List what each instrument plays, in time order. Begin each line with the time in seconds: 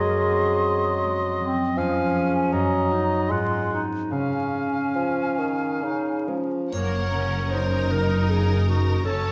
Already playing: harp F#2 G#3 F#4, bassoon F#3, clarinet G#4, oboe D#5, flute C6
0.31 harp C4
0.67 harp G#4
1.04 harp G#3
1.40 harp F#3, clarinet C4
1.76 harp F2, bassoon F3, clarinet C#4, oboe F5, flute G#5
2.14 harp C#4 G#4
2.53 harp F#2, bassoon F#3, oboe D#5, flute A#5
2.90 harp D#4 F#4, clarinet D#4
3.29 harp G#2, bassoon G#3, clarinet F4, oboe F#5, flute C6
3.70 harp C4 F#4, clarinet D#4
4.11 harp C#3, bassoon C#3, clarinet C#4, oboe F5, flute G#5
4.54 harp C#4
4.95 bassoon F3, harp F4
5.39 bassoon D#3, harp G#4
5.82 bassoon C#3, harp C#4, clarinet D#4
6.27 bassoon F3, harp G#3, clarinet C#4
6.72 double bass section F#1, harp F#2, cello section F#2, viola section A#3, violin section A#4 F#5, clarinet C#5, triangle
7.13 harp C#3, viola section C#4
7.51 harp C#4, viola section D#4, violin section A#4 A#5, clarinet C5
7.91 harp C#3, clarinet A#4
8.30 harp A#3, clarinet G#4, violin section A#5
8.68 harp C#3, clarinet F#4
9.05 double bass section F#1, harp F#2, cello section F#2, viola section C#4, clarinet A4, violin section C#5 A5